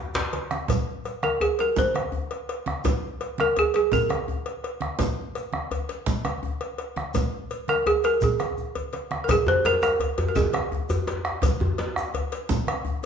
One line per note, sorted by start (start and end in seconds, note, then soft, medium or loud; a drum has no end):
0.14 cowbell medium
0.14 djembe slap loud
0.14 low conga soft
0.14 djembe bass medium
0.14 shekere soft
0.33 cowbell soft
0.33 djembe slap medium
0.33 high conga medium
0.51 bombo rim medium
0.51 djembe slap medium
0.51 high conga medium
0.51 shekere soft
0.68 bombo low medium
0.68 cowbell medium
0.68 low conga medium
0.68 djembe bass medium
0.68 shekere medium
1.05 bombo rim soft
1.05 cowbell soft
1.05 shekere soft
1.23 1.42 A#4 medium
1.23 bombo rim medium
1.23 high conga medium
1.23 djembe tone medium
1.41 1.60 G#4 medium
1.41 cowbell medium
1.41 djembe bass medium
1.59 1.76 A#4 medium
1.59 cowbell soft
1.59 djembe slap medium
1.76 2.46 C5 medium
1.76 bombo low loud
1.76 low conga medium
1.76 shekere soft
1.94 bombo rim medium
1.94 cowbell soft
1.94 djembe tone medium
1.94 high conga medium
2.12 djembe bass medium
2.31 bombo rim soft
2.31 cowbell soft
2.49 bombo rim soft
2.49 cowbell medium
2.66 bombo rim medium
2.66 djembe slap medium
2.66 high conga medium
2.66 djembe tone medium
2.84 bombo low loud
2.84 cowbell medium
2.84 djembe bass medium
2.84 low conga medium
2.84 shekere medium
3.21 bombo rim soft
3.21 cowbell medium
3.21 shekere soft
3.38 3.58 A#4 loud
3.38 bombo rim medium
3.38 high conga medium
3.38 djembe tone medium
3.56 3.75 G#4 medium
3.56 cowbell soft
3.56 high conga soft
3.56 djembe bass medium
3.74 3.92 G#4 medium
3.74 cowbell soft
3.74 djembe slap medium
3.92 4.60 A#4 medium
3.92 bombo low medium
3.92 low conga medium
3.92 shekere medium
4.09 bombo rim medium
4.09 cowbell medium
4.09 high conga medium
4.09 djembe tone medium
4.28 djembe bass medium
4.46 bombo rim soft
4.46 cowbell medium
4.64 bombo rim soft
4.64 cowbell soft
4.80 bombo rim medium
4.80 djembe slap medium
4.80 high conga medium
4.80 djembe tone medium
4.99 bombo low medium
4.99 cowbell medium
4.99 djembe bass medium
4.99 low conga medium
4.99 shekere medium
5.35 bombo rim soft
5.35 cowbell medium
5.35 shekere soft
5.53 bombo rim medium
5.53 high conga medium
5.53 djembe tone medium
5.71 cowbell soft
5.71 djembe bass medium
5.89 cowbell medium
5.89 djembe slap medium
6.06 bombo low medium
6.06 low conga medium
6.06 shekere medium
6.25 bombo rim medium
6.25 cowbell medium
6.25 high conga medium
6.25 djembe tone medium
6.43 djembe bass medium
6.61 bombo rim soft
6.61 cowbell soft
6.78 bombo rim soft
6.78 cowbell soft
6.96 bombo rim medium
6.96 djembe slap medium
6.96 djembe tone medium
6.96 high conga medium
7.14 bombo rim soft
7.14 bombo low medium
7.14 cowbell medium
7.14 djembe slap soft
7.14 high conga soft
7.14 djembe bass medium
7.14 low conga medium
7.14 shekere medium
7.33 high conga soft
7.50 cowbell soft
7.50 shekere soft
7.68 7.87 A#4 medium
7.68 bombo rim medium
7.68 djembe slap soft
7.68 djembe tone medium
7.68 high conga medium
7.68 shekere soft
7.86 7.95 G#4 medium
7.86 bombo rim soft
7.86 cowbell medium
7.86 djembe slap soft
7.86 high conga soft
7.86 djembe bass medium
8.03 8.23 A#4 medium
8.03 cowbell soft
8.03 djembe slap medium
8.03 shekere soft
8.21 8.90 G#4 medium
8.21 bombo low medium
8.21 high conga soft
8.21 low conga medium
8.21 shekere medium
8.39 bombo rim medium
8.39 cowbell soft
8.39 high conga medium
8.39 djembe tone medium
8.39 shekere soft
8.57 djembe bass soft
8.57 shekere soft
8.75 cowbell soft
8.75 high conga soft
8.75 djembe bass soft
8.93 bombo rim soft
8.93 cowbell medium
8.93 djembe slap soft
8.93 high conga soft
9.11 bombo rim medium
9.11 djembe slap medium
9.11 high conga medium
9.24 9.29 A#4 medium
9.28 9.48 G#4 medium
9.28 bombo low loud
9.28 cowbell medium
9.28 djembe tone medium
9.28 djembe bass loud
9.28 low conga medium
9.28 shekere medium
9.47 9.66 C5 loud
9.47 high conga medium
9.47 djembe bass medium
9.65 9.82 A#4 loud
9.65 cowbell medium
9.65 djembe tone medium
9.65 shekere soft
9.82 10.16 A#4 loud
9.82 bombo rim medium
9.82 djembe tone medium
9.82 shekere soft
10.00 cowbell medium
10.00 djembe slap soft
10.00 high conga soft
10.00 djembe bass medium
10.18 cowbell medium
10.18 djembe slap medium
10.18 djembe bass medium
10.29 10.36 A#4 medium
10.35 10.73 G#4 medium
10.35 bombo low loud
10.35 djembe tone medium
10.35 low conga medium
10.35 shekere medium
10.53 bombo rim medium
10.53 cowbell medium
10.53 djembe slap soft
10.53 high conga medium
10.72 djembe slap soft
10.72 djembe bass medium
10.89 cowbell medium
10.89 djembe slap soft
10.89 djembe tone medium
10.89 djembe bass medium
10.89 shekere medium
11.07 cowbell medium
11.07 djembe slap soft
11.07 djembe tone medium
11.07 shekere soft
11.25 bombo rim medium
11.25 djembe slap medium
11.42 bombo low loud
11.42 cowbell medium
11.42 djembe tone medium
11.42 low conga medium
11.42 djembe bass medium
11.42 shekere medium
11.60 high conga medium
11.60 djembe bass medium
11.78 cowbell medium
11.78 djembe tone medium
11.78 shekere soft
11.96 bombo rim medium
11.96 djembe tone medium
11.96 shekere medium
12.14 cowbell medium
12.14 djembe slap soft
12.14 high conga soft
12.14 djembe bass medium
12.32 cowbell medium
12.32 djembe slap medium
12.49 bombo low loud
12.49 djembe tone medium
12.49 low conga medium
12.49 shekere medium
12.67 bombo rim medium
12.67 cowbell medium
12.67 djembe slap soft
12.67 high conga medium
12.85 djembe bass medium